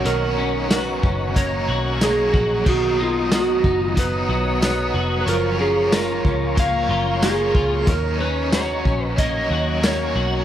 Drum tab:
CC |--------|x-------|--------|--------|
HH |x-x-x-x-|--x-x-x-|x-x-x-x-|x-x-x-x-|
TB |--x---x-|--x---x-|--x---x-|--x---x-|
SD |--o---o-|--o---o-|--o---o-|--o---o-|
BD |---oo--o|o--oo---|---oo--o|o--oo---|